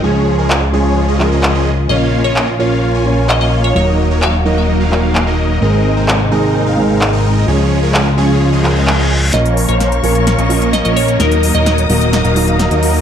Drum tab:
HH |----------------|----------------|----------------|----------------|
CP |----x-----x-x---|----x-------x---|----x-----x-x---|----x-------x---|
SD |----------------|----------------|----------------|----------------|

HH |----------------|xxoxxxoxxxoxxxox|xxoxxxoxxxoxxxoo|
CP |----x-----x-x---|----------------|----------------|
SD |----------------|o---o---o---o---|o---o---o---o---|